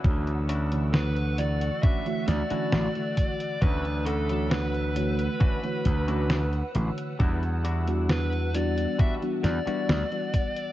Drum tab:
HH |xxxxxxxxxxxxxxxx|xxxxxxxxxxxxxxxx|xxxxxxxxxxxxxxxx|
SD |----o-----o-o---|----o-------o---|----o-----o-o---|
BD |o-------o-----o-|o-------o-o-----|o-------o-----o-|